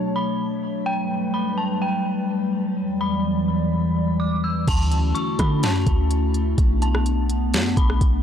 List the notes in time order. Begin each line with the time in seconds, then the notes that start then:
Already playing: B2 F#3 A3 D4 C#5 A5
0.16 B5
0.86 G2 F#3 G3 B4 G5
1.34 B5
1.58 A5
1.82 G5
2.77 E2 E3 D5
3.01 B5
4.20 D6
4.44 E6
4.68 D2 D3 A3 C#4 E4 F#4 A5, kick, closed hi-hat, crash
4.92 closed hi-hat
5.15 C#6, closed hi-hat
5.39 D3 B5, kick, cross-stick, closed hi-hat
5.63 F#2 A5, snare, closed hi-hat
5.87 D2, kick, closed hi-hat
6.11 closed hi-hat
6.34 closed hi-hat
6.58 B1 B3 D4, kick, closed hi-hat
6.82 A5, closed hi-hat
6.95 cross-stick
7.06 closed hi-hat
7.29 closed hi-hat
7.53 F#2, snare, closed hi-hat
7.77 B1 B5, kick, closed hi-hat
7.90 cross-stick
8.01 B1, kick, closed hi-hat